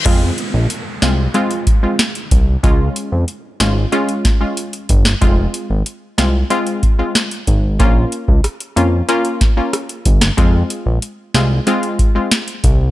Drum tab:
CC |x---------------|----------------|----------------|----------------|
HH |x-x-x-x-xxx-xxx-|x-x-x-x-xxx-xxx-|x-x-x-x-xxx-xxx-|x-x-xxx-xxx-xxx-|
SD |------o-----o---|------o---o----o|------o-----o---|----r-----o-r--o|
BD |o---------o---o-|o---------o---o-|o---------o---o-|o--o------o---o-|

CC |----------------|
HH |x-x-x-x-xxx-xxx-|
SD |------o-----o---|
BD |o---------o---o-|